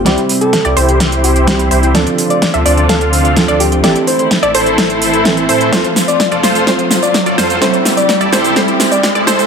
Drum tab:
HH |xxoxxxoxxxoxxxox|xxoxxxoxxxoxxxox|xxoxxxoxxxoxxxox|xxoxxxoxxxoxxxox|
SH |----------------|----------------|----------------|x-xxx-xxx-xxx-xx|
SD |o---o---o---o---|o---o---o---o---|o---o---o---o---|o-o-o-o-o-o-o-o-|
BD |o---o---o---o---|o---o---o---o---|o---o---o---o---|o---o---o---o---|

HH |xxoxxxoxxxoxxxox|
SH |x-xxx-xxx-xxx-xx|
SD |o-o-o-o-o-o-o-o-|
BD |o---o---o---o---|